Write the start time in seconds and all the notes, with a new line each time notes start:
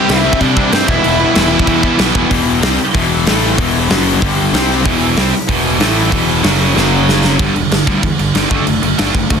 Already playing: C3 E3
0.08 C2 C3 E3 G3 C4 E4 E5, snare, crash
0.24 C3 E3 G3 C4 E4
0.33 kick
0.40 C3 E3 G3 C4 D4 E4 D5, kick, crash
0.56 C3 E3 G3 C4 E4, kick
0.72 G2 C3 E3 G3 C4 E4 C5, snare, crash
0.88 E1 E2 B2 E3 G3 B3 E4 E5, kick
1.03 E1 E2 B2 E3 G3 B3 E4, crash
1.19 E2 B2 E3 G3 B3 E4
1.34 E1 E2 B2 E3 G3 B3 E4, snare, crash
1.50 E2 B2 E3 G3 B3 E4
1.59 kick
1.66 E2 B2 E3 G3 B3 E4, kick, crash
1.83 E2 B2 E3 G3 B3 E4, kick
1.98 B1 E2 B2 E3 G3 B3 E4, snare, crash
2.14 E1 E2 B2 E3 G3 B3 E4, kick
2.30 E1 E2 B2 E3, kick, open hi-hat
2.61 C2 C3 G3 C4, snare, open hi-hat
2.78 muted overdriven electric guitar stroke, muted distorted electric guitar stroke, muted picked electric bass stroke
2.94 E1 E2 B2 E3, kick, open hi-hat
3.26 A1 A2 E3 A3, snare, open hi-hat
3.57 E1 E2 B2 E3, kick, open hi-hat
3.89 F#1 F#2 C#3 F#3, snare, open hi-hat
4.21 G1 G2 D3 G3, kick
4.53 C2 C3 G3 C4, snare, open hi-hat
4.84 E1 E2 B2 E3, kick, open hi-hat
5.17 C2 C3 G3 C4, snare, open hi-hat
5.33 muted overdriven electric guitar stroke, muted picked electric bass stroke, muted distorted electric guitar stroke
5.48 E1 E2 B2 E3, kick, open hi-hat
5.79 A1 A2 E3 A3, snare, open hi-hat
6.11 E1 E2 B2 E3, kick, open hi-hat
6.42 F#1 F#2 C#3 F#3, snare, open hi-hat
6.75 F#1 F#2 C#3 F#3, snare
7.09 snare
7.24 snare
7.39 G1 G2 D3 G3, kick, crash
7.54 E1 G2 D3, crash
7.71 G1 G2 D3, snare, crash
7.86 D2 G2 D3 G3, kick, crash
8.03 E2 G2 D3, kick, crash
8.19 G1 G2 D3, crash
8.35 G1 G2 D3 G3, snare, crash
8.50 F#1 D3 A3 D4, kick, crash
8.67 F#1 D3 A3, crash
8.82 F#1 D3 A3, crash
8.98 F#1 D3 A3 D4, snare, crash
9.14 F#1 D3 A3, kick, crash
9.30 F#1 D3 A3, kick, crash